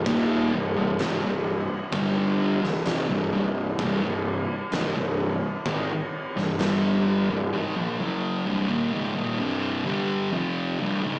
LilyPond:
<<
  \new Staff \with { instrumentName = "Distorted electric guitar" } { \clef bass \time 4/4 \key c \minor \tempo 4 = 64 <ees, bes, ees>8 <c, g,>16 <c, g,>16 <des, aes,>16 <c, g,>8 r16 <g, d g>8. <c, g,>16 <f, c>16 <c, g,>16 <c, g,>8 | <c, g,>16 <c, g,>8 r16 <des, aes,>16 <c, g,>8 r16 <aes, ees>16 r8 <c, g,>16 <g, d g>8. <c, g,>16 | <aes, ees>16 <bes, f>16 <fis, des fis>8 <c, g,>16 <ees, bes,>16 <des, aes,>16 <ees, bes,>16 <c, g, c>8 <g, d g>8 <f, c f>8 <c, g,>16 <des, aes,>16 | }
  \new Staff \with { instrumentName = "Distorted electric guitar" } { \clef bass \time 4/4 \key c \minor <ees, bes, ees>8 <c, g,>16 <c, g,>16 <des, aes,>16 <c, g,>8 r16 <g, d g>8. <c, g,>16 <f, c>16 <c, g,>16 <c, g,>8 | <c, g,>16 <c, g,>8 r16 <des, aes,>16 <c, g,>8 r16 <aes, ees>16 r8 <c, g,>16 <g, d g>8. <c, g,>16 | <aes, ees>16 <bes, f>16 <fis, des fis>8 <c, g,>16 <ees, bes,>16 <des, aes,>16 <ees, bes,>16 <c, g, c>8 <g, d g>8 <f, c f>8 <c, g,>16 <des, aes,>16 | }
  \new Staff \with { instrumentName = "Picked electric bass" } { \clef bass \time 4/4 \key c \minor ees,,8 c,,16 c,,16 des,,16 c,,8 r16 g,,8. c,,16 f,,16 c,,16 c,,8 | c,,16 c,,8 r16 des,,16 c,,8 r16 aes,,16 r8 c,,16 g,,8. c,,16 | r1 | }
  \new DrumStaff \with { instrumentName = "Drums" } \drummode { \time 4/4 <cymc bd>4 <cymc sn>4 <cymc bd>8. sn16 <cymc sn>4 | <cymc bd>4 <cymc sn>4 <cymc bd>8. sn16 <cymc sn>4 | r4 r4 r4 r4 | }
>>